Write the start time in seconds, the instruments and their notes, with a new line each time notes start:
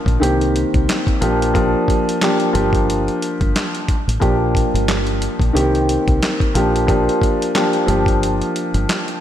Already playing: upright piano F3 A#3 D4 G4
0.06 fingered electric bass A#1, kick, closed hi-hat
0.20 fingered electric bass C2, upright piano D#3 A#3 C4 G4, closed hi-hat
0.41 closed hi-hat
0.56 closed hi-hat
0.74 fingered electric bass C2, kick, closed hi-hat
0.89 snare, clap, closed hi-hat
1.07 kick, closed hi-hat
1.21 fingered electric bass A#1, upright piano F3 A#3 D4 G4, closed hi-hat
1.42 closed hi-hat
1.54 upright piano F3 A#3 D4 G4, kick, closed hi-hat
1.88 kick, closed hi-hat
2.09 closed hi-hat
2.21 upright piano F3 A#3 D4 G4, snare, clap, closed hi-hat
2.40 closed hi-hat
2.53 fingered electric bass G1, upright piano F3 A#3 D4 G4, closed hi-hat
2.73 kick, closed hi-hat
2.90 closed hi-hat
3.08 closed hi-hat
3.22 closed hi-hat
3.41 fingered electric bass G1, kick, closed hi-hat
3.56 snare, clap, closed hi-hat
3.75 closed hi-hat
3.88 kick, closed hi-hat
4.08 fingered electric bass A1, closed hi-hat
4.20 fingered electric bass A#1, upright piano F3 A#3 D4 G4, kick, closed hi-hat
4.55 kick, closed hi-hat
4.74 fingered electric bass G1, closed hi-hat
4.88 snare, clap, closed hi-hat
5.07 closed hi-hat
5.22 closed hi-hat
5.39 fingered electric bass A#1, kick, closed hi-hat
5.53 fingered electric bass C2, upright piano D#3 A#3 C4 G4, closed hi-hat
5.75 closed hi-hat
5.89 closed hi-hat
6.08 fingered electric bass C2, kick, closed hi-hat
6.23 snare, clap, closed hi-hat
6.40 kick, closed hi-hat
6.55 fingered electric bass A#1, upright piano F3 A#3 D4 G4, closed hi-hat
6.76 closed hi-hat
6.87 upright piano F3 A#3 D4 G4, kick, closed hi-hat
7.09 closed hi-hat
7.22 kick, closed hi-hat
7.42 closed hi-hat
7.55 upright piano F3 A#3 D4 G4, snare, clap, closed hi-hat
7.73 closed hi-hat
7.86 fingered electric bass G1, upright piano F3 A#3 D4 G4, closed hi-hat
8.06 kick, closed hi-hat
8.23 closed hi-hat
8.42 closed hi-hat
8.56 closed hi-hat
8.74 fingered electric bass G1, closed hi-hat
8.89 snare, clap, closed hi-hat
9.08 closed hi-hat